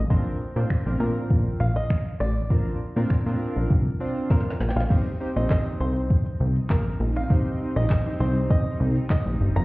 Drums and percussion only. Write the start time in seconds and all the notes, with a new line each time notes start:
0.10 kick
0.70 finger snap, kick
1.30 kick
1.90 finger snap, kick
2.50 kick
3.10 finger snap, kick
3.70 kick
4.30 kick, snare
4.40 snare
4.50 snare
4.60 snare
4.70 snare
4.80 snare
4.90 kick, crash
5.07 closed hi-hat
5.37 closed hi-hat
5.50 kick, snare, clap
5.66 closed hi-hat
5.96 closed hi-hat
6.10 kick
6.26 closed hi-hat
6.56 closed hi-hat
6.70 kick, snare, clap
6.86 closed hi-hat
7.16 closed hi-hat
7.30 kick
7.46 closed hi-hat
7.76 closed hi-hat
7.90 kick, snare, clap
8.06 closed hi-hat
8.36 closed hi-hat
8.50 kick
8.66 closed hi-hat
8.96 closed hi-hat
9.10 kick, snare, clap
9.26 closed hi-hat
9.56 closed hi-hat